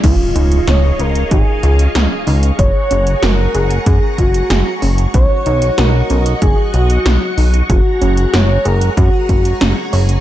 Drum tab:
CC |x---------------|----------------|----------------|----------------|
HH |x-xxx-xxx-xxx-ox|x-xxx-xxx-xxx-ox|x-xxx-xxx-xxx-ox|x-xxx-xxx-xxx-ox|
SD |----o-------o---|----o-------o---|----o-------o---|----o-------o---|
BD |o-------o-------|o-------o-o-----|o-------o-------|o-------o-o-----|